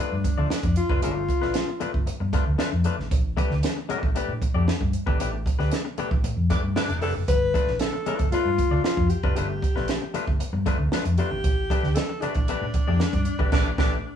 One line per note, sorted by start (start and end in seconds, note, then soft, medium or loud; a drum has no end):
0.00 0.15 A3 medium
0.00 0.15 D4 medium
0.00 0.50 D4 medium
0.00 0.15 F4 medium
0.00 0.15 B4 medium
0.12 0.23 G2 medium
0.24 muted clean electric guitar stroke soft
0.24 kick medium
0.24 closed hi-hat medium
0.37 0.49 D2 medium
0.37 0.49 A3 soft
0.37 0.50 D4 soft
0.37 0.51 F4 soft
0.37 0.50 D5 medium
0.50 0.75 D4 medium
0.50 muted clean electric guitar stroke soft
0.50 snare loud
0.50 closed hi-hat medium
0.63 0.75 F2 medium
0.63 muted clean electric guitar stroke soft
0.63 kick medium
0.63 closed hi-hat soft
0.76 1.01 F4 medium
0.76 closed hi-hat medium
0.89 1.01 F#1 medium
0.89 1.01 A3 medium
0.89 1.02 D4 medium
0.89 1.02 F4 medium
0.89 1.03 B4 medium
0.89 kick loud
1.02 1.26 G1 medium
1.02 1.23 A3 medium
1.02 1.16 D4 medium
1.02 2.03 F4 medium
1.02 1.15 F4 medium
1.02 1.15 B4 medium
1.02 closed hi-hat loud
1.16 muted clean electric guitar stroke soft
1.29 muted clean electric guitar stroke soft
1.29 kick medium
1.29 closed hi-hat medium
1.42 1.54 A1 medium
1.42 1.55 A3 medium
1.42 1.55 D4 soft
1.42 1.55 F4 medium
1.42 1.54 B4 medium
1.42 snare soft
1.54 snare loud
1.54 closed hi-hat medium
1.68 muted clean electric guitar stroke soft
1.80 1.97 A3 medium
1.80 1.93 D4 medium
1.80 1.93 F4 medium
1.80 1.92 B4 medium
1.80 muted fingered electric bass stroke medium
1.80 closed hi-hat medium
1.94 2.06 G1 medium
1.94 muted clean electric guitar stroke soft
1.94 kick medium
2.06 muted clean electric guitar stroke soft
2.06 muted fingered electric bass stroke soft
2.06 closed hi-hat medium
2.20 2.32 G2 medium
2.20 muted clean electric guitar stroke soft
2.33 2.49 A3 medium
2.33 2.46 D4 medium
2.33 2.46 F4 loud
2.33 2.45 B4 medium
2.33 kick medium
2.33 closed hi-hat medium
2.46 2.58 D2 medium
2.46 muted clean electric guitar stroke soft
2.58 2.75 A3 medium
2.58 2.72 D4 medium
2.58 2.71 F4 medium
2.58 2.71 B4 medium
2.58 snare loud
2.58 closed hi-hat medium
2.72 2.84 F2 medium
2.72 muted clean electric guitar stroke soft
2.84 2.98 A3 medium
2.84 2.98 D4 medium
2.84 2.97 F4 medium
2.84 2.97 B4 medium
2.84 closed hi-hat medium
2.98 3.10 G#1 medium
2.98 muted clean electric guitar stroke soft
2.98 snare soft
3.11 3.34 A1 loud
3.11 kick loud
3.11 closed hi-hat loud
3.37 3.53 A3 medium
3.37 3.54 D4 medium
3.37 3.54 G4 medium
3.37 3.54 B4 loud
3.37 kick medium
3.37 closed hi-hat medium
3.50 3.62 D2 medium
3.50 snare soft
3.63 snare loud
3.63 closed hi-hat loud
3.77 muted clean electric guitar stroke soft
3.89 4.09 A3 loud
3.89 4.02 D4 medium
3.89 4.02 G4 medium
3.89 4.01 B4 loud
3.89 muted fingered electric bass stroke medium
3.89 closed hi-hat medium
4.02 4.14 A1 medium
4.02 muted clean electric guitar stroke soft
4.02 kick medium
4.15 4.32 A3 medium
4.15 4.32 D4 medium
4.15 4.32 G4 medium
4.15 4.33 B4 medium
4.15 muted fingered electric bass stroke soft
4.15 closed hi-hat medium
4.28 4.40 A2 medium
4.42 muted clean electric guitar stroke soft
4.42 kick medium
4.42 closed hi-hat medium
4.54 4.66 F2 medium
4.54 4.66 A3 medium
4.54 4.67 D4 medium
4.54 4.67 G4 medium
4.54 4.67 D5 medium
4.68 muted fingered electric bass stroke soft
4.68 muted clean electric guitar stroke soft
4.68 snare loud
4.68 closed hi-hat medium
4.81 4.92 G2 medium
4.81 muted clean electric guitar stroke soft
4.81 kick medium
4.93 closed hi-hat medium
5.06 5.18 G#1 medium
5.06 5.19 A3 medium
5.06 5.19 D4 medium
5.06 5.20 G4 medium
5.06 5.20 B4 medium
5.06 kick medium
5.19 5.43 A1 loud
5.19 5.36 A3 medium
5.19 5.33 D4 medium
5.19 5.32 G4 loud
5.19 5.32 B4 medium
5.19 closed hi-hat loud
5.33 muted clean electric guitar stroke soft
5.46 muted clean electric guitar stroke soft
5.46 kick medium
5.46 closed hi-hat medium
5.59 5.70 D2 medium
5.59 5.72 A3 soft
5.59 5.72 D4 medium
5.59 5.72 G4 medium
5.59 5.72 B4 medium
5.59 snare soft
5.71 snare loud
5.71 closed hi-hat medium
5.85 muted clean electric guitar stroke medium
5.98 6.14 A3 medium
5.98 6.11 D4 medium
5.98 6.11 G4 loud
5.98 6.11 B4 medium
5.98 muted fingered electric bass stroke soft
5.98 closed hi-hat medium
6.11 6.23 A1 medium
6.11 muted clean electric guitar stroke soft
6.11 kick medium
6.23 6.35 A2 medium
6.23 muted clean electric guitar stroke soft
6.23 closed hi-hat medium
6.37 6.48 F2 medium
6.50 6.63 A3 medium
6.50 6.58 D4 medium
6.50 6.63 D4 medium
6.50 6.63 G4 medium
6.50 6.62 B4 medium
6.50 kick medium
6.50 closed hi-hat medium
6.63 6.74 G2 medium
6.63 muted clean electric guitar stroke soft
6.76 6.92 A3 medium
6.76 7.13 D4 loud
6.76 6.89 D4 medium
6.76 6.89 G4 medium
6.76 6.88 B4 medium
6.76 snare loud
6.76 closed hi-hat medium
6.89 7.02 E1 medium
6.89 muted clean electric guitar stroke soft
6.89 closed hi-hat soft
7.02 7.13 F1 medium
7.02 7.15 A3 medium
7.02 7.15 D4 medium
7.02 7.15 G4 medium
7.02 7.14 A4 medium
7.02 7.14 B4 medium
7.02 open hi-hat medium
7.15 7.26 F#1 medium
7.15 muted clean electric guitar stroke soft
7.28 7.51 G1 loud
7.28 7.81 B4 loud
7.28 kick loud
7.28 closed hi-hat loud
7.54 7.70 A3 medium
7.54 7.71 D4 medium
7.54 7.71 F4 medium
7.54 7.71 B4 medium
7.54 kick medium
7.54 closed hi-hat medium
7.67 7.79 A1 medium
7.67 snare soft
7.79 8.31 A4 loud
7.79 snare loud
7.79 closed hi-hat loud
7.93 muted clean electric guitar stroke medium
8.06 8.26 A3 medium
8.06 8.20 D4 medium
8.06 8.19 F4 medium
8.06 8.19 B4 loud
8.06 muted fingered electric bass stroke soft
8.06 closed hi-hat medium
8.19 8.31 G1 medium
8.19 muted clean electric guitar stroke soft
8.19 kick medium
8.19 closed hi-hat soft
8.32 8.49 A3 medium
8.32 8.49 D4 medium
8.32 8.80 F4 loud
8.32 8.49 F4 medium
8.32 8.50 B4 medium
8.32 muted fingered electric bass stroke soft
8.32 closed hi-hat medium
8.45 8.57 G2 medium
8.58 muted clean electric guitar stroke soft
8.58 kick medium
8.58 closed hi-hat medium
8.71 8.82 D2 medium
8.71 8.84 A3 soft
8.71 8.84 D4 medium
8.71 8.84 F4 medium
8.71 8.84 D5 medium
8.84 9.11 F4 medium
8.84 muted clean electric guitar stroke soft
8.84 snare loud
8.84 closed hi-hat medium
8.97 9.09 F2 medium
8.97 muted clean electric guitar stroke soft
8.97 kick medium
9.09 9.34 G4 medium
9.09 closed hi-hat medium
9.23 9.35 F#1 medium
9.23 9.35 A3 medium
9.23 9.36 D4 medium
9.23 9.36 F4 medium
9.23 9.37 B4 medium
9.23 kick medium
9.35 9.59 G1 loud
9.35 9.53 A3 medium
9.35 9.50 D4 medium
9.35 9.49 F4 medium
9.35 10.36 G4 loud
9.35 9.49 B4 medium
9.35 closed hi-hat medium
9.50 muted clean electric guitar stroke soft
9.62 muted clean electric guitar stroke soft
9.62 kick medium
9.62 closed hi-hat medium
9.75 9.87 A1 medium
9.75 9.89 A3 medium
9.75 9.89 D4 medium
9.75 9.89 F4 medium
9.75 9.88 B4 medium
9.75 snare soft
9.88 snare loud
9.88 closed hi-hat loud
10.01 muted clean electric guitar stroke soft
10.14 10.30 A3 medium
10.14 10.27 D4 medium
10.14 10.26 F4 medium
10.14 10.26 B4 loud
10.14 muted fingered electric bass stroke medium
10.14 closed hi-hat medium
10.27 10.39 G1 medium
10.27 muted clean electric guitar stroke soft
10.27 kick medium
10.40 muted clean electric guitar stroke soft
10.40 muted fingered electric bass stroke soft
10.40 closed hi-hat medium
10.53 10.65 G2 loud
10.53 muted clean electric guitar stroke soft
10.66 10.82 A3 medium
10.66 10.79 D4 loud
10.66 10.78 F4 loud
10.66 10.78 B4 loud
10.66 kick medium
10.66 closed hi-hat medium
10.79 10.91 D2 medium
10.79 muted clean electric guitar stroke soft
10.92 11.09 A3 medium
10.92 11.06 D4 medium
10.92 11.05 F4 medium
10.92 11.05 B4 medium
10.92 snare loud
10.92 closed hi-hat medium
11.05 11.17 F2 medium
11.05 muted clean electric guitar stroke soft
11.05 closed hi-hat medium
11.18 11.31 A3 medium
11.18 11.31 D4 medium
11.18 11.31 F4 medium
11.18 11.97 G4 loud
11.18 11.31 B4 medium
11.18 closed hi-hat medium
11.31 11.43 G#1 medium
11.31 muted clean electric guitar stroke soft
11.44 11.67 A1 loud
11.44 kick loud
11.44 closed hi-hat loud
11.70 11.87 A3 medium
11.70 11.87 D4 medium
11.70 11.87 G4 medium
11.70 11.88 B4 medium
11.70 kick medium
11.70 closed hi-hat medium
11.83 11.95 D2 loud
11.83 snare soft
11.95 12.23 A4 loud
11.95 snare loud
11.95 closed hi-hat loud
12.09 muted clean electric guitar stroke medium
12.21 12.39 A3 medium
12.21 14.16 D4 loud
12.21 12.35 D4 medium
12.21 12.35 G4 medium
12.21 12.34 B4 medium
12.21 muted fingered electric bass stroke soft
12.21 closed hi-hat medium
12.35 12.47 A1 medium
12.35 muted clean electric guitar stroke soft
12.35 kick medium
12.35 closed hi-hat soft
12.48 12.65 A3 medium
12.48 12.65 D4 medium
12.48 12.65 G4 medium
12.48 12.66 B4 loud
12.48 muted fingered electric bass stroke soft
12.48 closed hi-hat medium
12.62 12.73 A2 loud
12.74 muted clean electric guitar stroke soft
12.74 kick medium
12.74 closed hi-hat medium
12.87 12.99 F2 medium
12.87 12.99 A3 medium
12.87 12.99 D4 medium
12.87 13.00 G4 medium
12.87 13.00 D5 medium
13.00 muted clean electric guitar stroke soft
13.00 muted fingered electric bass stroke soft
13.00 snare loud
13.00 closed hi-hat medium
13.13 13.25 G2 medium
13.13 muted clean electric guitar stroke soft
13.13 kick medium
13.13 closed hi-hat soft
13.25 closed hi-hat medium
13.39 13.51 G#1 medium
13.39 13.51 A3 medium
13.39 13.52 D4 medium
13.39 13.52 G4 medium
13.39 13.52 B4 medium
13.39 kick medium
13.52 13.70 A1 loud
13.52 13.70 A3 loud
13.52 13.70 D4 medium
13.52 13.66 D4 loud
13.52 13.70 G4 loud
13.52 13.71 B4 loud
13.52 kick loud
13.52 snare loud
13.52 crash medium
13.78 13.96 A1 medium
13.78 13.97 A3 loud
13.78 13.92 D4 loud
13.78 13.97 D4 loud
13.78 13.96 G4 medium
13.78 13.96 B4 medium
13.78 kick loud
13.78 snare loud